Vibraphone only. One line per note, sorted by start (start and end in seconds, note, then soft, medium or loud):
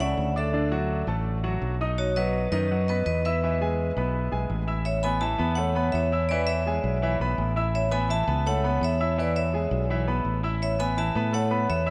0.00 0.34 D5 medium
0.00 0.33 F#5 loud
0.37 1.04 A4 medium
0.37 1.05 E5 medium
1.98 2.15 F#4 medium
1.98 2.17 C#5 medium
2.16 2.50 B4 medium
2.16 2.51 D#5 medium
2.52 2.86 B4 medium
2.52 2.85 D#5 medium
2.88 3.05 B4 medium
2.88 3.05 D#5 medium
3.06 3.23 B4 medium
3.06 3.23 D#5 loud
3.25 4.47 B4 medium
3.25 4.47 E5 medium
4.85 5.03 C#5 medium
4.85 5.02 E5 loud
5.03 5.21 G#5 medium
5.03 5.20 B5 loud
5.21 5.56 E5 medium
5.21 5.55 A5 loud
5.55 5.91 C#5 medium
5.55 5.94 F#5 medium
5.92 6.28 C#5 medium
5.92 6.27 E5 loud
6.29 6.39 B4 medium
6.29 6.37 D5 medium
6.47 7.17 C#5 medium
6.47 7.15 E5 medium
7.75 7.83 C#5 medium
7.75 7.83 E5 loud
7.91 8.08 G#5 medium
7.91 8.09 B5 loud
8.10 8.44 E5 medium
8.10 8.44 A5 loud
8.46 8.80 C#5 medium
8.46 8.80 F#5 medium
8.83 9.16 C#5 medium
8.83 9.17 E5 medium
9.19 9.35 B4 medium
9.19 9.36 D5 medium
9.36 10.04 C#5 medium
9.36 10.04 E5 medium
10.62 10.79 C#5 medium
10.62 10.79 E5 loud
10.80 10.96 G#5 medium
10.80 10.97 B5 loud
10.98 11.32 E5 medium
10.98 11.31 A5 loud
11.34 11.68 C#5 medium
11.34 11.67 F#5 loud
11.70 11.90 C#5 medium
11.70 11.90 E5 medium